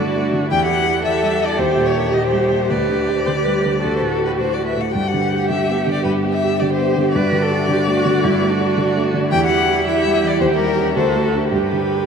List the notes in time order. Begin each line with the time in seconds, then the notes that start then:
Already playing: G2 A3 D4 F#4 D5
0.00 D3 F#4
0.16 A3
0.33 D3
0.51 E2 E4 G4 G5
0.65 F#5
0.69 E3
0.87 G4
1.03 E3 G4 A4 E5
1.23 G3
1.42 E3 D5
1.58 D#2 G4 C5
1.77 A#2
1.86 C#5
1.95 A#4
2.13 A#2 G4 D#5
2.27 C5
2.32 G3
2.52 A#2
2.69 D2 G4 B4 D5
2.89 D3
3.08 G4
3.26 D3 C5
3.40 B4
3.46 G3
3.66 D3
3.81 D2 F#4 A4
3.96 C5
4.02 A2
4.09 A4
4.22 F#4 G4 B4
4.38 A2 F#4 C5
4.53 D5
4.58 A3
4.66 B4 E5
4.77 A2 F#5
4.94 G2 G4 G5
5.08 F#5
5.14 D3
5.32 G4
5.49 D3 E5
5.69 B3
5.87 D3
5.91 D5
6.04 G2 B4
6.23 B3
6.32 E5
6.43 G4
6.60 D3 G4 D5
6.73 C5
6.78 B3
6.97 D3
7.13 G2 F#4 B4 D5
7.32 D3
7.42 A4
7.51 F#4
7.69 D3 G4
7.87 A3
7.96 F#4
8.05 D3
8.24 G2 E4
8.42 A3
8.51 D4
8.60 F#4
8.77 D3
8.97 A3
9.14 D3
9.31 E2 E4 G4 G5
9.46 F#5
9.50 E3
9.69 G4
9.86 E3 G4 E5
10.05 G3
10.23 E3
10.28 D5
10.40 D#2 G4 C5
10.54 A#4
10.59 G3
10.77 C#4 G4
10.96 D2 F#4 A4 C5
11.16 A3
11.24 A4
11.35 D4 F#4
11.52 G2 G4 B4
11.73 D3
11.92 G4